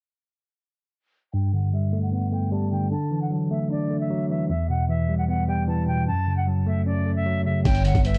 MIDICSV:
0, 0, Header, 1, 6, 480
1, 0, Start_track
1, 0, Tempo, 394737
1, 1625, Time_signature, 4, 2, 24, 8
1, 9951, End_track
2, 0, Start_track
2, 0, Title_t, "Flute"
2, 0, Program_c, 0, 73
2, 1623, Note_on_c, 0, 79, 79
2, 1843, Note_off_c, 0, 79, 0
2, 1868, Note_on_c, 0, 78, 81
2, 2085, Note_off_c, 0, 78, 0
2, 2105, Note_on_c, 0, 76, 92
2, 2443, Note_off_c, 0, 76, 0
2, 2461, Note_on_c, 0, 78, 77
2, 2572, Note_off_c, 0, 78, 0
2, 2585, Note_on_c, 0, 78, 79
2, 2803, Note_off_c, 0, 78, 0
2, 2822, Note_on_c, 0, 79, 80
2, 3042, Note_off_c, 0, 79, 0
2, 3069, Note_on_c, 0, 81, 77
2, 3286, Note_off_c, 0, 81, 0
2, 3307, Note_on_c, 0, 79, 78
2, 3525, Note_off_c, 0, 79, 0
2, 3543, Note_on_c, 0, 81, 104
2, 3883, Note_off_c, 0, 81, 0
2, 3909, Note_on_c, 0, 78, 78
2, 4017, Note_off_c, 0, 78, 0
2, 4265, Note_on_c, 0, 76, 80
2, 4484, Note_off_c, 0, 76, 0
2, 4511, Note_on_c, 0, 74, 83
2, 4847, Note_off_c, 0, 74, 0
2, 4869, Note_on_c, 0, 76, 87
2, 5206, Note_off_c, 0, 76, 0
2, 5228, Note_on_c, 0, 76, 82
2, 5445, Note_off_c, 0, 76, 0
2, 5466, Note_on_c, 0, 76, 81
2, 5684, Note_off_c, 0, 76, 0
2, 5708, Note_on_c, 0, 78, 78
2, 5925, Note_off_c, 0, 78, 0
2, 5947, Note_on_c, 0, 76, 89
2, 6284, Note_off_c, 0, 76, 0
2, 6300, Note_on_c, 0, 78, 76
2, 6412, Note_off_c, 0, 78, 0
2, 6425, Note_on_c, 0, 78, 82
2, 6644, Note_off_c, 0, 78, 0
2, 6666, Note_on_c, 0, 79, 82
2, 6884, Note_off_c, 0, 79, 0
2, 6906, Note_on_c, 0, 81, 89
2, 7124, Note_off_c, 0, 81, 0
2, 7145, Note_on_c, 0, 79, 83
2, 7364, Note_off_c, 0, 79, 0
2, 7385, Note_on_c, 0, 81, 117
2, 7724, Note_off_c, 0, 81, 0
2, 7744, Note_on_c, 0, 78, 76
2, 7854, Note_off_c, 0, 78, 0
2, 8103, Note_on_c, 0, 76, 77
2, 8323, Note_off_c, 0, 76, 0
2, 8342, Note_on_c, 0, 74, 85
2, 8682, Note_off_c, 0, 74, 0
2, 8703, Note_on_c, 0, 76, 88
2, 9042, Note_off_c, 0, 76, 0
2, 9060, Note_on_c, 0, 76, 77
2, 9281, Note_off_c, 0, 76, 0
2, 9304, Note_on_c, 0, 79, 83
2, 9523, Note_off_c, 0, 79, 0
2, 9548, Note_on_c, 0, 78, 84
2, 9765, Note_off_c, 0, 78, 0
2, 9788, Note_on_c, 0, 76, 100
2, 9951, Note_off_c, 0, 76, 0
2, 9951, End_track
3, 0, Start_track
3, 0, Title_t, "Soft synth lead"
3, 0, Program_c, 1, 80
3, 9305, Note_on_c, 1, 73, 107
3, 9756, Note_off_c, 1, 73, 0
3, 9789, Note_on_c, 1, 71, 84
3, 9951, Note_off_c, 1, 71, 0
3, 9951, End_track
4, 0, Start_track
4, 0, Title_t, "Tine electric piano"
4, 0, Program_c, 2, 4
4, 1624, Note_on_c, 2, 43, 89
4, 1858, Control_c, 2, 64, 127
4, 1864, Note_on_c, 2, 50, 72
4, 2104, Note_on_c, 2, 55, 79
4, 2345, Note_on_c, 2, 57, 103
4, 2584, Note_on_c, 2, 59, 78
4, 2810, Note_off_c, 2, 57, 0
4, 2824, Note_on_c, 2, 57, 77
4, 2825, Note_off_c, 2, 43, 0
4, 3050, Note_off_c, 2, 55, 0
4, 3065, Note_off_c, 2, 50, 0
4, 3065, Note_on_c, 2, 55, 104
4, 3305, Note_on_c, 2, 50, 72
4, 3530, Note_off_c, 2, 50, 0
4, 3544, Note_on_c, 2, 50, 89
4, 3545, Note_off_c, 2, 55, 0
4, 3545, Note_off_c, 2, 57, 0
4, 3545, Note_off_c, 2, 59, 0
4, 3558, Control_c, 2, 64, 0
4, 3737, Control_c, 2, 64, 127
4, 3785, Note_on_c, 2, 52, 71
4, 4024, Note_on_c, 2, 54, 80
4, 4264, Note_on_c, 2, 57, 98
4, 4504, Note_on_c, 2, 62, 86
4, 4730, Note_off_c, 2, 57, 0
4, 4744, Note_on_c, 2, 57, 77
4, 4745, Note_off_c, 2, 50, 0
4, 4969, Note_off_c, 2, 54, 0
4, 4984, Note_on_c, 2, 54, 93
4, 4985, Note_off_c, 2, 52, 0
4, 5225, Note_on_c, 2, 52, 72
4, 5464, Note_on_c, 2, 40, 90
4, 5465, Note_off_c, 2, 52, 0
4, 5465, Note_off_c, 2, 54, 0
4, 5465, Note_off_c, 2, 57, 0
4, 5465, Note_off_c, 2, 62, 0
4, 5482, Control_c, 2, 64, 0
4, 5679, Control_c, 2, 64, 127
4, 5704, Note_on_c, 2, 47, 76
4, 5944, Note_on_c, 2, 52, 74
4, 6185, Note_on_c, 2, 55, 94
4, 6425, Note_on_c, 2, 59, 80
4, 6649, Note_off_c, 2, 55, 0
4, 6664, Note_off_c, 2, 40, 0
4, 6664, Note_on_c, 2, 55, 85
4, 6890, Note_off_c, 2, 52, 0
4, 6904, Note_off_c, 2, 47, 0
4, 6904, Note_on_c, 2, 52, 96
4, 7145, Note_on_c, 2, 47, 77
4, 7385, Note_off_c, 2, 47, 0
4, 7385, Note_off_c, 2, 52, 0
4, 7385, Note_off_c, 2, 55, 0
4, 7385, Note_off_c, 2, 59, 0
4, 7385, Note_on_c, 2, 42, 92
4, 7401, Control_c, 2, 64, 0
4, 7579, Control_c, 2, 64, 127
4, 7625, Note_on_c, 2, 49, 69
4, 7865, Note_on_c, 2, 54, 76
4, 8105, Note_on_c, 2, 57, 100
4, 8346, Note_on_c, 2, 61, 77
4, 8571, Note_off_c, 2, 57, 0
4, 8585, Note_off_c, 2, 42, 0
4, 8585, Note_on_c, 2, 57, 76
4, 8810, Note_off_c, 2, 54, 0
4, 8825, Note_off_c, 2, 49, 0
4, 8825, Note_on_c, 2, 54, 83
4, 9065, Note_on_c, 2, 49, 75
4, 9305, Note_off_c, 2, 49, 0
4, 9305, Note_off_c, 2, 54, 0
4, 9305, Note_off_c, 2, 57, 0
4, 9305, Note_off_c, 2, 61, 0
4, 9305, Note_on_c, 2, 43, 89
4, 9321, Control_c, 2, 64, 0
4, 9532, Control_c, 2, 64, 127
4, 9544, Note_on_c, 2, 50, 82
4, 9784, Note_on_c, 2, 55, 85
4, 9951, Note_off_c, 2, 43, 0
4, 9951, Note_off_c, 2, 50, 0
4, 9951, Note_off_c, 2, 55, 0
4, 9951, End_track
5, 0, Start_track
5, 0, Title_t, "808-style bass"
5, 0, Program_c, 3, 38
5, 9305, Note_on_c, 3, 31, 112
5, 9651, Note_off_c, 3, 31, 0
5, 9665, Note_on_c, 3, 31, 101
5, 9951, Note_off_c, 3, 31, 0
5, 9951, End_track
6, 0, Start_track
6, 0, Title_t, "Drums"
6, 9305, Note_on_c, 9, 36, 109
6, 9305, Note_on_c, 9, 49, 97
6, 9306, Note_on_c, 9, 42, 82
6, 9420, Note_off_c, 9, 42, 0
6, 9420, Note_on_c, 9, 42, 57
6, 9427, Note_off_c, 9, 36, 0
6, 9427, Note_off_c, 9, 49, 0
6, 9542, Note_off_c, 9, 42, 0
6, 9544, Note_on_c, 9, 42, 85
6, 9665, Note_on_c, 9, 36, 90
6, 9666, Note_off_c, 9, 42, 0
6, 9667, Note_on_c, 9, 42, 49
6, 9786, Note_off_c, 9, 42, 0
6, 9786, Note_on_c, 9, 42, 73
6, 9787, Note_off_c, 9, 36, 0
6, 9904, Note_off_c, 9, 42, 0
6, 9904, Note_on_c, 9, 42, 60
6, 9951, Note_off_c, 9, 42, 0
6, 9951, End_track
0, 0, End_of_file